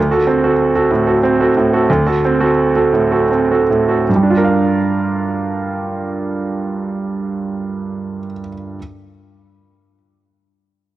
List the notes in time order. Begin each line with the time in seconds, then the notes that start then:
Already playing: D2
0.11 F#4 A4
0.27 C4
0.44 F#4 A4
0.75 F#4 A4
0.91 A2
1.07 F#4 A4
1.23 C4
1.40 F#4 A4
1.57 A2
1.73 F#4 A4
1.90 D2
2.06 F#4 A4
2.25 C4
2.40 F#4 A4
2.75 F#4 A4
2.93 A2
3.11 F#4 A4
3.31 C4
3.52 F#4 A4
3.70 A2
3.88 F#4 A4
4.09 G2
4.16 G3
4.23 D4
4.30 F4
4.37 A#4
4.44 F5